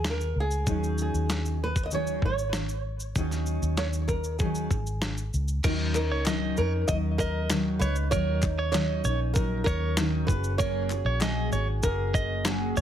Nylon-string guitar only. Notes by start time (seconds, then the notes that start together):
0.10 A#4
0.40 G#4
1.02 G#4
1.64 B4
1.86 D#5
1.94 C#5
2.25 C#5
3.78 C#5
4.08 A#4
4.39 G#4
5.95 A#4
6.58 A#4
6.88 D#5
7.18 A#4
7.79 B4
8.11 C#5
8.72 C#5
9.34 A#4
9.64 A#4
10.27 B4
10.58 C#5
11.21 G#4
11.83 A#4
12.46 G#4